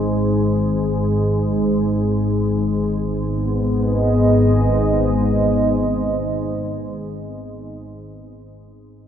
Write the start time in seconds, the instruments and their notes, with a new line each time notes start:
Already playing: synth drone G#1 G#2, analog synth pad G#3 G#4 D#5
3.04 synth drone G#1 G#2, analog synth pad B3
3.23 analog synth pad G#4
3.43 analog synth pad D#5